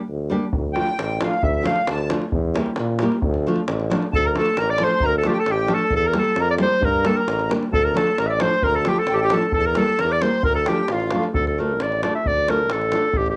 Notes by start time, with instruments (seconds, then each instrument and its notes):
0.08 tuba D2
0.30 nylon-string guitar G3 A#3 D4 G4
0.53 tuba D2, davul low
0.73 nylon-string guitar F3 A3 D4 F4, accordion G5, davul high
0.88 davul high
0.99 tuba A1, davul high
1.20 nylon-string guitar F3 A3 D4 F4, accordion F5, davul high
1.34 davul high
1.42 tuba D2, accordion E5, davul low
1.63 nylon-string guitar F3 A3 D4 F4, accordion F5, davul high
1.76 davul high
1.88 tuba D2, accordion A5, davul high
2.10 nylon-string guitar F3 A3 D4 F4, davul high
2.22 davul high
2.32 tuba E2, davul low
2.54 nylon-string guitar G3 A#3 E4 G4, davul high
2.66 davul high
2.76 tuba A#2, davul high
2.99 nylon-string guitar G3 A#3 E4, davul high
3.03 nylon-string guitar G4
3.12 davul high
3.22 tuba D2, davul low
3.34 davul high
3.46 nylon-string guitar F3 A3 D4 F4
3.56 davul high
3.67 tuba A1, davul high
3.80 davul high
3.90 nylon-string guitar F3 A3 D4 F4, davul high
4.02 davul high
4.12 tuba D2, clarinet A4, accordion A5, davul low
4.25 clarinet A#4, accordion A#5
4.35 nylon-string guitar F3 A3 D4 F4 A4, clarinet A4, accordion A5, davul high
4.46 davul high
4.57 tuba A1, clarinet A#4, accordion A#5, davul high
4.70 clarinet D5, accordion D6
4.78 nylon-string guitar F3 A3 D4 F4 A4, accordion C6, davul high
4.84 clarinet C5
5.00 tuba D2, accordion A#5, davul low
5.06 clarinet A#4
5.18 clarinet A4, accordion A5
5.23 nylon-string guitar F3 A3 D4 F4 A4, davul high
5.27 clarinet F4 G4, accordion F5 G5
5.33 clarinet G4, accordion G5, davul high
5.39 clarinet A4, accordion A5
5.46 tuba A1, davul high
5.51 clarinet G4, accordion G5
5.67 nylon-string guitar F3 A3 D4 F4 A4, davul high
5.74 clarinet A4, accordion A5
5.91 tuba E2, accordion A5, davul low
5.96 clarinet A4
6.05 clarinet A#4, accordion A#5
6.13 nylon-string guitar G3 A#3 E4 G4 A#4, accordion A5, davul high
6.19 clarinet A4
6.24 davul high
6.36 tuba F2, accordion A#5, davul high
6.42 clarinet A#4
6.50 clarinet D5, accordion D6
6.58 nylon-string guitar G3 A#3 E4 G4 A#4, accordion C6, davul high
6.62 clarinet C5
6.81 tuba G2, accordion A#5, davul low
6.85 clarinet A#4
7.04 nylon-string guitar G3 A#3 D4 G4 A#4, clarinet A4, accordion A5, davul high
7.16 clarinet A#4, accordion A#5, davul high
7.27 tuba A1, davul high
7.39 davul high
7.49 nylon-string guitar G3 A#3 D4 G4 A#4, davul high
7.63 davul high
7.71 tuba D2, clarinet A4, accordion A5, davul low
7.84 clarinet A#4, accordion A#5
7.94 nylon-string guitar F3 A3 D4 F4 A4, clarinet A4, accordion A5, davul high
8.07 davul high
8.18 tuba A1, clarinet A#4, accordion A#5, davul high
8.27 clarinet D5 E5, accordion E6
8.32 accordion D6
8.40 nylon-string guitar F3 A3 D4 F4 A4, clarinet C5, davul high
8.46 accordion C6
8.62 tuba D2, clarinet A#4, accordion A#5, davul low
8.75 clarinet A4, accordion A5
8.85 nylon-string guitar F3 A3 D4 F4 A4, accordion G5, davul high
8.89 clarinet G4
8.96 clarinet A4, davul high
9.00 accordion A5
9.07 tuba A1, accordion G5, davul high
9.14 clarinet G4 A4, accordion A5
9.22 clarinet G4, accordion G5
9.30 nylon-string guitar F3 A3 D4 F4 A4, clarinet A4, accordion A5, davul high
9.52 tuba E2, clarinet A4, accordion A5, davul low
9.67 clarinet A#4, accordion A#5
9.75 nylon-string guitar G3 A#3 E4 G4 A#4, clarinet A4, davul high
9.80 accordion A5
9.88 davul high
9.99 tuba E2, clarinet A#4, accordion A#5, davul high
10.10 clarinet D5, accordion D6
10.21 nylon-string guitar G3 A#3 E4 G4 A#4, clarinet C5, accordion C6, davul high
10.43 tuba D2, clarinet A#4, accordion A#5, davul low
10.54 clarinet A4, accordion A5, davul high
10.66 nylon-string guitar F3 A3 D4 F4 A4, clarinet G4, accordion G5, davul high
10.88 tuba A1, clarinet F4, accordion F5, davul high
11.00 davul high
11.11 nylon-string guitar F3 A3 D4, davul high
11.15 nylon-string guitar F4 A4
11.23 davul high
11.33 tuba D2, clarinet A4, davul low
11.47 clarinet A4, davul high
11.58 nylon-string guitar A3 D4 F4 A4, clarinet A#4
11.79 tuba A1, clarinet D5, davul high
11.92 davul high
12.02 nylon-string guitar A3 D4 F4 A4, clarinet D5, davul high
12.15 clarinet E5
12.24 tuba D2, clarinet D5, davul low
12.37 davul high
12.48 nylon-string guitar A3 D4 F4 A4, clarinet A#4, davul high
12.69 tuba A1, clarinet A4, davul high
12.81 davul high
12.91 nylon-string guitar A3 D4 F4 A4, davul high
13.13 tuba A1, davul low
13.18 clarinet G4
13.26 davul high
13.30 clarinet G4